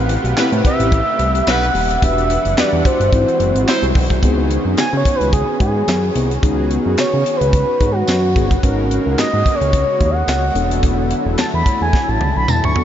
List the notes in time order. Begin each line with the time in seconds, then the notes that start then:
Already playing: A1 C3 A3 C4 E4 G4 B4
0.09 closed hi-hat
0.24 B1, closed hi-hat
0.37 A2 G3 B3 C4 E4 G4 B4, snare, clap, tambourine
0.52 A2, closed hi-hat
0.65 E5, kick, closed hi-hat
0.79 A1, closed hi-hat
0.92 kick, closed hi-hat
1.19 C2, closed hi-hat
1.35 closed hi-hat
1.47 B1 G3 B3 E4 B4 F#5, snare, clap, tambourine
1.63 closed hi-hat
1.74 D#1, open hi-hat
1.91 closed hi-hat
2.02 E1 E3 G3 D4 F#4 G4 B4 E5 F#5, kick, closed hi-hat
2.18 closed hi-hat
2.30 closed hi-hat
2.45 F#1, closed hi-hat
2.57 E2 G3 B3 D4 F#4 G4 B4 D5, snare, clap, tambourine
2.73 E2
2.85 C5, kick, closed hi-hat
3.00 G1, closed hi-hat
3.12 G#1 G#3 C4 E4 F#4 C5, kick, closed hi-hat
3.28 closed hi-hat
3.40 F#1, closed hi-hat
3.55 G#1, closed hi-hat
3.68 F#3 C4 E4 C5, snare, clap, tambourine
3.82 C2, closed hi-hat
3.95 B1, kick, open hi-hat
4.10 C2, kick, closed hi-hat
4.22 C#2 D#3 B3 C#4 D#4 F#4 G#4, kick, closed hi-hat
4.50 closed hi-hat
4.65 F#2
4.77 C#3 G#5, snare, clap, closed hi-hat, tambourine
4.93 C#3
4.97 C#5
5.05 kick, closed hi-hat
5.15 B4
5.21 C#2, closed hi-hat
5.33 G#4, kick, closed hi-hat
5.60 G#2 G#4, kick, closed hi-hat
5.88 F#2, snare, clap, closed hi-hat, tambourine
6.15 C2 B3 D#4 F#4 G#4, closed hi-hat
6.31 closed hi-hat
6.42 C#2 B3 D#4 F#4 G#4, kick, closed hi-hat
6.71 closed hi-hat
6.86 F#2
6.98 C#3 C#5, snare, clap, closed hi-hat, tambourine
7.14 C#3
7.26 closed hi-hat
7.36 B4
7.41 C#2, closed hi-hat
7.53 kick, closed hi-hat
7.80 G#2, kick, closed hi-hat
7.92 F#4
8.08 F#2, snare, clap, closed hi-hat, tambourine
8.35 G1 B3 D#4 F#4 G#4, kick, closed hi-hat
8.51 kick, closed hi-hat
8.62 G#1 C#3 G#3 A#3 C#4 D#4 F#4 A#4, kick, closed hi-hat
8.91 closed hi-hat
9.06 C#2
9.18 G#2 D#5, snare, clap, closed hi-hat, tambourine
9.33 G#2
9.46 kick, closed hi-hat
9.55 C#5
9.61 C#2, closed hi-hat
9.73 kick, closed hi-hat
10.01 D#2, kick, closed hi-hat
10.10 F#5
10.28 C#2, snare, clap, closed hi-hat, tambourine
10.55 E1 D3 F#3 A3 B3 D4 E4 F#4 A4, closed hi-hat
10.71 closed hi-hat
10.83 kick, closed hi-hat
11.11 closed hi-hat
11.26 E1
11.38 E2 A5, snare, clap, closed hi-hat, tambourine
11.54 E2 B5
11.66 kick, closed hi-hat
11.81 E2 G#5
11.93 kick, snare
12.09 A1 A5
12.20 C#2, high tom
12.36 B1 B5
12.48 E2 A5, mid tom, tambourine
12.64 D2 C#6, mid tom
12.76 B3 D4 F#4 A4, floor tom